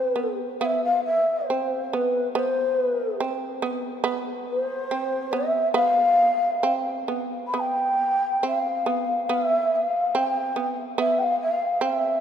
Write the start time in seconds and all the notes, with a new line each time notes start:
Already playing: C4 C5
0.16 B3
0.60 B3 F5
0.65 E5
0.84 F5
1.04 E5
1.46 C4 C5
1.84 C5
1.90 B3 C5
1.95 B4
2.32 B3 C5
2.80 B4
3.20 C4
3.62 B3
4.04 B3
4.49 C5
4.91 C4
5.31 B3 E5
5.73 B3 F5
6.63 C4
7.08 B3
7.47 B5
7.54 B3 B5
7.60 G5
8.43 C4 F5
8.86 B3
9.29 B3 E5
9.75 F5
10.15 C4 G5
10.56 B3
10.98 B3 E5
11.18 F5 G5
11.41 F5
11.81 C4 E5